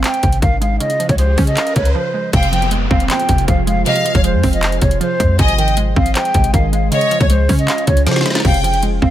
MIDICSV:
0, 0, Header, 1, 9, 480
1, 0, Start_track
1, 0, Key_signature, -4, "minor"
1, 0, Tempo, 382166
1, 1010, Time_signature, 4, 2, 24, 8
1, 11435, End_track
2, 0, Start_track
2, 0, Title_t, "Violin section"
2, 0, Program_c, 0, 48
2, 2925, Note_on_c, 0, 79, 97
2, 3379, Note_off_c, 0, 79, 0
2, 4850, Note_on_c, 0, 77, 116
2, 5302, Note_off_c, 0, 77, 0
2, 6768, Note_on_c, 0, 75, 106
2, 7220, Note_off_c, 0, 75, 0
2, 8689, Note_on_c, 0, 73, 102
2, 9141, Note_off_c, 0, 73, 0
2, 10607, Note_on_c, 0, 79, 99
2, 11060, Note_off_c, 0, 79, 0
2, 11435, End_track
3, 0, Start_track
3, 0, Title_t, "Flute"
3, 0, Program_c, 1, 73
3, 50, Note_on_c, 1, 79, 92
3, 502, Note_off_c, 1, 79, 0
3, 527, Note_on_c, 1, 77, 80
3, 749, Note_off_c, 1, 77, 0
3, 772, Note_on_c, 1, 77, 71
3, 992, Note_off_c, 1, 77, 0
3, 1003, Note_on_c, 1, 75, 96
3, 1345, Note_off_c, 1, 75, 0
3, 1372, Note_on_c, 1, 73, 93
3, 1482, Note_off_c, 1, 73, 0
3, 1487, Note_on_c, 1, 72, 79
3, 1827, Note_off_c, 1, 72, 0
3, 1847, Note_on_c, 1, 75, 78
3, 2187, Note_off_c, 1, 75, 0
3, 2215, Note_on_c, 1, 73, 82
3, 2433, Note_off_c, 1, 73, 0
3, 2448, Note_on_c, 1, 72, 70
3, 2900, Note_off_c, 1, 72, 0
3, 2934, Note_on_c, 1, 77, 91
3, 3153, Note_off_c, 1, 77, 0
3, 3177, Note_on_c, 1, 79, 89
3, 3395, Note_off_c, 1, 79, 0
3, 3651, Note_on_c, 1, 77, 88
3, 3871, Note_off_c, 1, 77, 0
3, 3893, Note_on_c, 1, 79, 87
3, 4343, Note_off_c, 1, 79, 0
3, 4372, Note_on_c, 1, 77, 73
3, 4592, Note_off_c, 1, 77, 0
3, 4610, Note_on_c, 1, 77, 85
3, 4831, Note_off_c, 1, 77, 0
3, 4851, Note_on_c, 1, 75, 93
3, 5189, Note_off_c, 1, 75, 0
3, 5219, Note_on_c, 1, 73, 86
3, 5325, Note_off_c, 1, 73, 0
3, 5334, Note_on_c, 1, 72, 79
3, 5670, Note_off_c, 1, 72, 0
3, 5694, Note_on_c, 1, 75, 83
3, 6031, Note_off_c, 1, 75, 0
3, 6043, Note_on_c, 1, 73, 85
3, 6267, Note_off_c, 1, 73, 0
3, 6294, Note_on_c, 1, 72, 86
3, 6743, Note_off_c, 1, 72, 0
3, 6772, Note_on_c, 1, 80, 92
3, 6992, Note_off_c, 1, 80, 0
3, 7012, Note_on_c, 1, 79, 84
3, 7232, Note_off_c, 1, 79, 0
3, 7494, Note_on_c, 1, 77, 87
3, 7713, Note_off_c, 1, 77, 0
3, 7734, Note_on_c, 1, 79, 91
3, 8183, Note_off_c, 1, 79, 0
3, 8210, Note_on_c, 1, 77, 81
3, 8431, Note_off_c, 1, 77, 0
3, 8455, Note_on_c, 1, 77, 75
3, 8673, Note_off_c, 1, 77, 0
3, 8686, Note_on_c, 1, 75, 102
3, 9027, Note_off_c, 1, 75, 0
3, 9054, Note_on_c, 1, 73, 93
3, 9163, Note_off_c, 1, 73, 0
3, 9169, Note_on_c, 1, 72, 81
3, 9508, Note_off_c, 1, 72, 0
3, 9528, Note_on_c, 1, 75, 81
3, 9868, Note_off_c, 1, 75, 0
3, 9896, Note_on_c, 1, 73, 87
3, 10114, Note_off_c, 1, 73, 0
3, 10130, Note_on_c, 1, 72, 73
3, 10582, Note_off_c, 1, 72, 0
3, 10614, Note_on_c, 1, 77, 94
3, 10833, Note_off_c, 1, 77, 0
3, 10855, Note_on_c, 1, 79, 89
3, 11074, Note_off_c, 1, 79, 0
3, 11329, Note_on_c, 1, 77, 86
3, 11435, Note_off_c, 1, 77, 0
3, 11435, End_track
4, 0, Start_track
4, 0, Title_t, "Ambient pad"
4, 0, Program_c, 2, 92
4, 2930, Note_on_c, 2, 53, 86
4, 2930, Note_on_c, 2, 65, 79
4, 2930, Note_on_c, 2, 68, 78
4, 2930, Note_on_c, 2, 72, 97
4, 6732, Note_off_c, 2, 53, 0
4, 6732, Note_off_c, 2, 65, 0
4, 6732, Note_off_c, 2, 68, 0
4, 6770, Note_on_c, 2, 56, 85
4, 6770, Note_on_c, 2, 68, 77
4, 6770, Note_on_c, 2, 75, 97
4, 8640, Note_off_c, 2, 72, 0
4, 8671, Note_off_c, 2, 56, 0
4, 8671, Note_off_c, 2, 75, 0
4, 8689, Note_on_c, 2, 49, 86
4, 8689, Note_on_c, 2, 61, 82
4, 8690, Note_on_c, 2, 65, 78
4, 10590, Note_off_c, 2, 49, 0
4, 10591, Note_off_c, 2, 61, 0
4, 10591, Note_off_c, 2, 65, 0
4, 10611, Note_on_c, 2, 53, 90
4, 10611, Note_on_c, 2, 65, 78
4, 10611, Note_on_c, 2, 72, 98
4, 11435, Note_off_c, 2, 53, 0
4, 11435, Note_off_c, 2, 65, 0
4, 11435, Note_off_c, 2, 68, 0
4, 11435, Note_off_c, 2, 72, 0
4, 11435, End_track
5, 0, Start_track
5, 0, Title_t, "Synth pluck"
5, 0, Program_c, 3, 84
5, 0, Note_on_c, 3, 48, 88
5, 0, Note_on_c, 3, 51, 73
5, 0, Note_on_c, 3, 56, 80
5, 0, Note_on_c, 3, 60, 97
5, 50, Note_on_c, 3, 72, 81
5, 280, Note_off_c, 3, 48, 0
5, 295, Note_on_c, 3, 48, 70
5, 513, Note_off_c, 3, 51, 0
5, 528, Note_on_c, 3, 51, 82
5, 757, Note_off_c, 3, 56, 0
5, 772, Note_on_c, 3, 56, 75
5, 1009, Note_off_c, 3, 51, 0
5, 1010, Note_off_c, 3, 72, 0
5, 1010, Note_on_c, 3, 49, 91
5, 1011, Note_off_c, 3, 56, 0
5, 1011, Note_off_c, 3, 60, 0
5, 1013, Note_off_c, 3, 48, 0
5, 1251, Note_on_c, 3, 53, 75
5, 1495, Note_on_c, 3, 56, 80
5, 1731, Note_on_c, 3, 61, 101
5, 1971, Note_on_c, 3, 77, 90
5, 2193, Note_off_c, 3, 49, 0
5, 2208, Note_on_c, 3, 49, 72
5, 2435, Note_off_c, 3, 53, 0
5, 2450, Note_on_c, 3, 53, 89
5, 2673, Note_off_c, 3, 56, 0
5, 2688, Note_on_c, 3, 56, 76
5, 2929, Note_off_c, 3, 49, 0
5, 2929, Note_off_c, 3, 56, 0
5, 2930, Note_off_c, 3, 53, 0
5, 2930, Note_off_c, 3, 61, 0
5, 2930, Note_on_c, 3, 48, 87
5, 2931, Note_off_c, 3, 77, 0
5, 3168, Note_on_c, 3, 53, 73
5, 3409, Note_on_c, 3, 56, 77
5, 3650, Note_on_c, 3, 60, 107
5, 3891, Note_on_c, 3, 72, 92
5, 4115, Note_off_c, 3, 48, 0
5, 4130, Note_on_c, 3, 48, 77
5, 4355, Note_off_c, 3, 53, 0
5, 4370, Note_on_c, 3, 53, 81
5, 4594, Note_off_c, 3, 56, 0
5, 4609, Note_on_c, 3, 56, 80
5, 4838, Note_off_c, 3, 48, 0
5, 4850, Note_off_c, 3, 60, 0
5, 4853, Note_on_c, 3, 48, 87
5, 5072, Note_off_c, 3, 53, 0
5, 5087, Note_on_c, 3, 53, 79
5, 5091, Note_off_c, 3, 72, 0
5, 5315, Note_off_c, 3, 56, 0
5, 5330, Note_on_c, 3, 56, 76
5, 5570, Note_on_c, 3, 60, 97
5, 5811, Note_on_c, 3, 72, 91
5, 6037, Note_off_c, 3, 48, 0
5, 6052, Note_on_c, 3, 48, 73
5, 6273, Note_off_c, 3, 53, 0
5, 6288, Note_on_c, 3, 53, 94
5, 6514, Note_off_c, 3, 56, 0
5, 6529, Note_on_c, 3, 56, 75
5, 6753, Note_off_c, 3, 48, 0
5, 6768, Note_on_c, 3, 48, 85
5, 6769, Note_off_c, 3, 53, 0
5, 6770, Note_off_c, 3, 56, 0
5, 6770, Note_off_c, 3, 60, 0
5, 6771, Note_off_c, 3, 72, 0
5, 7013, Note_on_c, 3, 51, 80
5, 7249, Note_on_c, 3, 56, 82
5, 7491, Note_on_c, 3, 60, 97
5, 7728, Note_on_c, 3, 72, 84
5, 7958, Note_off_c, 3, 48, 0
5, 7973, Note_on_c, 3, 48, 75
5, 8192, Note_off_c, 3, 51, 0
5, 8207, Note_on_c, 3, 51, 87
5, 8436, Note_off_c, 3, 56, 0
5, 8451, Note_on_c, 3, 56, 78
5, 8687, Note_on_c, 3, 49, 89
5, 8689, Note_off_c, 3, 51, 0
5, 8689, Note_off_c, 3, 72, 0
5, 8691, Note_off_c, 3, 56, 0
5, 8691, Note_off_c, 3, 60, 0
5, 8692, Note_off_c, 3, 48, 0
5, 8929, Note_on_c, 3, 53, 76
5, 9171, Note_on_c, 3, 56, 82
5, 9408, Note_on_c, 3, 61, 105
5, 9651, Note_on_c, 3, 77, 91
5, 9873, Note_off_c, 3, 49, 0
5, 9888, Note_on_c, 3, 49, 74
5, 10114, Note_off_c, 3, 53, 0
5, 10129, Note_on_c, 3, 53, 90
5, 10352, Note_off_c, 3, 56, 0
5, 10367, Note_on_c, 3, 56, 80
5, 10609, Note_off_c, 3, 49, 0
5, 10609, Note_off_c, 3, 56, 0
5, 10609, Note_off_c, 3, 61, 0
5, 10609, Note_on_c, 3, 48, 84
5, 10610, Note_off_c, 3, 53, 0
5, 10610, Note_off_c, 3, 77, 0
5, 10848, Note_on_c, 3, 53, 75
5, 11089, Note_on_c, 3, 56, 78
5, 11329, Note_on_c, 3, 60, 104
5, 11435, Note_off_c, 3, 48, 0
5, 11435, Note_off_c, 3, 53, 0
5, 11435, Note_off_c, 3, 56, 0
5, 11435, Note_off_c, 3, 60, 0
5, 11435, End_track
6, 0, Start_track
6, 0, Title_t, "808-style bass"
6, 0, Program_c, 4, 38
6, 292, Note_on_c, 4, 32, 105
6, 521, Note_off_c, 4, 32, 0
6, 531, Note_on_c, 4, 32, 105
6, 992, Note_off_c, 4, 32, 0
6, 1370, Note_on_c, 4, 37, 105
6, 1716, Note_off_c, 4, 37, 0
6, 1731, Note_on_c, 4, 49, 104
6, 1961, Note_off_c, 4, 49, 0
6, 2211, Note_on_c, 4, 37, 104
6, 2441, Note_off_c, 4, 37, 0
6, 2930, Note_on_c, 4, 29, 111
6, 3622, Note_off_c, 4, 29, 0
6, 3651, Note_on_c, 4, 29, 106
6, 3881, Note_off_c, 4, 29, 0
6, 4132, Note_on_c, 4, 29, 107
6, 4361, Note_off_c, 4, 29, 0
6, 4371, Note_on_c, 4, 29, 107
6, 4831, Note_off_c, 4, 29, 0
6, 5210, Note_on_c, 4, 29, 111
6, 5451, Note_on_c, 4, 41, 101
6, 5470, Note_off_c, 4, 29, 0
6, 5565, Note_off_c, 4, 41, 0
6, 5571, Note_on_c, 4, 29, 106
6, 6032, Note_off_c, 4, 29, 0
6, 6051, Note_on_c, 4, 29, 107
6, 6281, Note_off_c, 4, 29, 0
6, 6530, Note_on_c, 4, 41, 104
6, 6760, Note_off_c, 4, 41, 0
6, 6770, Note_on_c, 4, 32, 115
6, 7462, Note_off_c, 4, 32, 0
6, 7490, Note_on_c, 4, 32, 105
6, 7721, Note_off_c, 4, 32, 0
6, 7971, Note_on_c, 4, 32, 104
6, 8201, Note_off_c, 4, 32, 0
6, 8209, Note_on_c, 4, 32, 106
6, 8671, Note_off_c, 4, 32, 0
6, 9050, Note_on_c, 4, 37, 104
6, 9396, Note_off_c, 4, 37, 0
6, 9410, Note_on_c, 4, 49, 107
6, 9641, Note_off_c, 4, 49, 0
6, 9891, Note_on_c, 4, 37, 111
6, 10130, Note_on_c, 4, 49, 95
6, 10149, Note_off_c, 4, 37, 0
6, 10358, Note_off_c, 4, 49, 0
6, 10610, Note_on_c, 4, 29, 113
6, 11302, Note_off_c, 4, 29, 0
6, 11331, Note_on_c, 4, 29, 109
6, 11435, Note_off_c, 4, 29, 0
6, 11435, End_track
7, 0, Start_track
7, 0, Title_t, "Downlifter"
7, 0, Program_c, 5, 103
7, 2930, Note_on_c, 5, 60, 92
7, 6770, Note_off_c, 5, 60, 0
7, 11435, End_track
8, 0, Start_track
8, 0, Title_t, "Riser"
8, 0, Program_c, 6, 103
8, 0, Note_on_c, 6, 60, 85
8, 2451, Note_off_c, 6, 60, 0
8, 11435, End_track
9, 0, Start_track
9, 0, Title_t, "Drums"
9, 50, Note_on_c, 9, 39, 113
9, 51, Note_on_c, 9, 42, 87
9, 173, Note_off_c, 9, 42, 0
9, 173, Note_on_c, 9, 42, 59
9, 176, Note_off_c, 9, 39, 0
9, 288, Note_off_c, 9, 42, 0
9, 288, Note_on_c, 9, 42, 76
9, 292, Note_on_c, 9, 36, 84
9, 408, Note_off_c, 9, 42, 0
9, 408, Note_on_c, 9, 42, 59
9, 417, Note_off_c, 9, 36, 0
9, 531, Note_on_c, 9, 36, 95
9, 533, Note_off_c, 9, 42, 0
9, 533, Note_on_c, 9, 42, 71
9, 656, Note_off_c, 9, 36, 0
9, 659, Note_off_c, 9, 42, 0
9, 774, Note_on_c, 9, 42, 69
9, 900, Note_off_c, 9, 42, 0
9, 1010, Note_on_c, 9, 42, 85
9, 1128, Note_off_c, 9, 42, 0
9, 1128, Note_on_c, 9, 42, 63
9, 1254, Note_off_c, 9, 42, 0
9, 1256, Note_on_c, 9, 42, 77
9, 1370, Note_on_c, 9, 36, 92
9, 1372, Note_off_c, 9, 42, 0
9, 1372, Note_on_c, 9, 42, 54
9, 1485, Note_off_c, 9, 42, 0
9, 1485, Note_on_c, 9, 42, 78
9, 1496, Note_off_c, 9, 36, 0
9, 1611, Note_off_c, 9, 42, 0
9, 1729, Note_on_c, 9, 46, 81
9, 1731, Note_on_c, 9, 36, 94
9, 1849, Note_on_c, 9, 42, 64
9, 1854, Note_off_c, 9, 46, 0
9, 1856, Note_off_c, 9, 36, 0
9, 1971, Note_off_c, 9, 42, 0
9, 1971, Note_on_c, 9, 39, 115
9, 1971, Note_on_c, 9, 42, 87
9, 2094, Note_off_c, 9, 42, 0
9, 2094, Note_on_c, 9, 42, 60
9, 2096, Note_off_c, 9, 39, 0
9, 2208, Note_off_c, 9, 42, 0
9, 2208, Note_on_c, 9, 42, 78
9, 2211, Note_on_c, 9, 36, 86
9, 2329, Note_off_c, 9, 42, 0
9, 2329, Note_on_c, 9, 42, 59
9, 2337, Note_off_c, 9, 36, 0
9, 2454, Note_off_c, 9, 42, 0
9, 2930, Note_on_c, 9, 42, 87
9, 2931, Note_on_c, 9, 36, 118
9, 3048, Note_off_c, 9, 42, 0
9, 3048, Note_on_c, 9, 42, 64
9, 3056, Note_off_c, 9, 36, 0
9, 3174, Note_off_c, 9, 42, 0
9, 3176, Note_on_c, 9, 42, 83
9, 3292, Note_off_c, 9, 42, 0
9, 3292, Note_on_c, 9, 42, 55
9, 3406, Note_off_c, 9, 42, 0
9, 3406, Note_on_c, 9, 42, 78
9, 3531, Note_off_c, 9, 42, 0
9, 3651, Note_on_c, 9, 36, 98
9, 3770, Note_on_c, 9, 42, 62
9, 3777, Note_off_c, 9, 36, 0
9, 3891, Note_on_c, 9, 39, 121
9, 3892, Note_off_c, 9, 42, 0
9, 3892, Note_on_c, 9, 42, 89
9, 4014, Note_off_c, 9, 42, 0
9, 4014, Note_on_c, 9, 42, 59
9, 4017, Note_off_c, 9, 39, 0
9, 4128, Note_off_c, 9, 42, 0
9, 4128, Note_on_c, 9, 42, 78
9, 4132, Note_on_c, 9, 36, 87
9, 4249, Note_off_c, 9, 42, 0
9, 4249, Note_on_c, 9, 42, 62
9, 4257, Note_off_c, 9, 36, 0
9, 4371, Note_on_c, 9, 36, 99
9, 4373, Note_off_c, 9, 42, 0
9, 4373, Note_on_c, 9, 42, 74
9, 4496, Note_off_c, 9, 36, 0
9, 4499, Note_off_c, 9, 42, 0
9, 4614, Note_on_c, 9, 42, 68
9, 4739, Note_off_c, 9, 42, 0
9, 4850, Note_on_c, 9, 42, 88
9, 4969, Note_off_c, 9, 42, 0
9, 4969, Note_on_c, 9, 42, 65
9, 5094, Note_off_c, 9, 42, 0
9, 5096, Note_on_c, 9, 42, 82
9, 5210, Note_on_c, 9, 36, 93
9, 5211, Note_off_c, 9, 42, 0
9, 5211, Note_on_c, 9, 42, 55
9, 5325, Note_off_c, 9, 42, 0
9, 5325, Note_on_c, 9, 42, 78
9, 5336, Note_off_c, 9, 36, 0
9, 5451, Note_off_c, 9, 42, 0
9, 5569, Note_on_c, 9, 46, 84
9, 5571, Note_on_c, 9, 36, 94
9, 5690, Note_on_c, 9, 42, 62
9, 5695, Note_off_c, 9, 46, 0
9, 5697, Note_off_c, 9, 36, 0
9, 5810, Note_on_c, 9, 39, 121
9, 5811, Note_off_c, 9, 42, 0
9, 5811, Note_on_c, 9, 42, 87
9, 5933, Note_off_c, 9, 42, 0
9, 5933, Note_on_c, 9, 42, 60
9, 5936, Note_off_c, 9, 39, 0
9, 6048, Note_off_c, 9, 42, 0
9, 6048, Note_on_c, 9, 42, 82
9, 6051, Note_on_c, 9, 36, 89
9, 6168, Note_off_c, 9, 42, 0
9, 6168, Note_on_c, 9, 42, 62
9, 6177, Note_off_c, 9, 36, 0
9, 6292, Note_off_c, 9, 42, 0
9, 6292, Note_on_c, 9, 42, 70
9, 6418, Note_off_c, 9, 42, 0
9, 6530, Note_on_c, 9, 36, 90
9, 6533, Note_on_c, 9, 42, 72
9, 6655, Note_off_c, 9, 36, 0
9, 6659, Note_off_c, 9, 42, 0
9, 6769, Note_on_c, 9, 42, 88
9, 6770, Note_on_c, 9, 36, 114
9, 6887, Note_off_c, 9, 42, 0
9, 6887, Note_on_c, 9, 42, 66
9, 6896, Note_off_c, 9, 36, 0
9, 7013, Note_off_c, 9, 42, 0
9, 7015, Note_on_c, 9, 42, 82
9, 7131, Note_off_c, 9, 42, 0
9, 7131, Note_on_c, 9, 42, 58
9, 7245, Note_off_c, 9, 42, 0
9, 7245, Note_on_c, 9, 42, 82
9, 7371, Note_off_c, 9, 42, 0
9, 7491, Note_on_c, 9, 36, 97
9, 7609, Note_on_c, 9, 42, 64
9, 7616, Note_off_c, 9, 36, 0
9, 7730, Note_on_c, 9, 39, 118
9, 7731, Note_off_c, 9, 42, 0
9, 7731, Note_on_c, 9, 42, 90
9, 7853, Note_off_c, 9, 42, 0
9, 7853, Note_on_c, 9, 42, 61
9, 7856, Note_off_c, 9, 39, 0
9, 7967, Note_off_c, 9, 42, 0
9, 7967, Note_on_c, 9, 42, 79
9, 7971, Note_on_c, 9, 36, 86
9, 8088, Note_off_c, 9, 42, 0
9, 8088, Note_on_c, 9, 42, 64
9, 8096, Note_off_c, 9, 36, 0
9, 8210, Note_on_c, 9, 36, 96
9, 8211, Note_off_c, 9, 42, 0
9, 8211, Note_on_c, 9, 42, 73
9, 8335, Note_off_c, 9, 36, 0
9, 8337, Note_off_c, 9, 42, 0
9, 8453, Note_on_c, 9, 42, 71
9, 8579, Note_off_c, 9, 42, 0
9, 8689, Note_on_c, 9, 42, 86
9, 8807, Note_off_c, 9, 42, 0
9, 8807, Note_on_c, 9, 42, 63
9, 8933, Note_off_c, 9, 42, 0
9, 8934, Note_on_c, 9, 42, 82
9, 9050, Note_on_c, 9, 36, 94
9, 9051, Note_off_c, 9, 42, 0
9, 9051, Note_on_c, 9, 42, 56
9, 9165, Note_off_c, 9, 42, 0
9, 9165, Note_on_c, 9, 42, 79
9, 9175, Note_off_c, 9, 36, 0
9, 9290, Note_off_c, 9, 42, 0
9, 9409, Note_on_c, 9, 46, 86
9, 9410, Note_on_c, 9, 36, 94
9, 9530, Note_on_c, 9, 42, 63
9, 9534, Note_off_c, 9, 46, 0
9, 9536, Note_off_c, 9, 36, 0
9, 9650, Note_off_c, 9, 42, 0
9, 9650, Note_on_c, 9, 39, 118
9, 9650, Note_on_c, 9, 42, 91
9, 9773, Note_off_c, 9, 42, 0
9, 9773, Note_on_c, 9, 42, 61
9, 9775, Note_off_c, 9, 39, 0
9, 9888, Note_off_c, 9, 42, 0
9, 9888, Note_on_c, 9, 42, 83
9, 9891, Note_on_c, 9, 36, 88
9, 10008, Note_off_c, 9, 42, 0
9, 10008, Note_on_c, 9, 42, 64
9, 10016, Note_off_c, 9, 36, 0
9, 10130, Note_off_c, 9, 42, 0
9, 10130, Note_on_c, 9, 38, 61
9, 10130, Note_on_c, 9, 42, 73
9, 10191, Note_off_c, 9, 38, 0
9, 10191, Note_on_c, 9, 38, 61
9, 10250, Note_off_c, 9, 38, 0
9, 10250, Note_off_c, 9, 42, 0
9, 10250, Note_on_c, 9, 38, 81
9, 10250, Note_on_c, 9, 42, 45
9, 10310, Note_off_c, 9, 38, 0
9, 10310, Note_on_c, 9, 38, 77
9, 10370, Note_off_c, 9, 38, 0
9, 10370, Note_off_c, 9, 42, 0
9, 10370, Note_on_c, 9, 38, 98
9, 10370, Note_on_c, 9, 42, 59
9, 10430, Note_off_c, 9, 38, 0
9, 10430, Note_on_c, 9, 38, 90
9, 10490, Note_off_c, 9, 38, 0
9, 10490, Note_off_c, 9, 42, 0
9, 10490, Note_on_c, 9, 38, 113
9, 10490, Note_on_c, 9, 42, 61
9, 10551, Note_off_c, 9, 38, 0
9, 10551, Note_on_c, 9, 38, 99
9, 10610, Note_on_c, 9, 36, 117
9, 10611, Note_on_c, 9, 49, 89
9, 10616, Note_off_c, 9, 42, 0
9, 10676, Note_off_c, 9, 38, 0
9, 10728, Note_on_c, 9, 42, 63
9, 10736, Note_off_c, 9, 36, 0
9, 10736, Note_off_c, 9, 49, 0
9, 10854, Note_off_c, 9, 42, 0
9, 10856, Note_on_c, 9, 42, 83
9, 10972, Note_off_c, 9, 42, 0
9, 10972, Note_on_c, 9, 42, 56
9, 11085, Note_off_c, 9, 42, 0
9, 11085, Note_on_c, 9, 42, 81
9, 11211, Note_off_c, 9, 42, 0
9, 11331, Note_on_c, 9, 36, 97
9, 11435, Note_off_c, 9, 36, 0
9, 11435, End_track
0, 0, End_of_file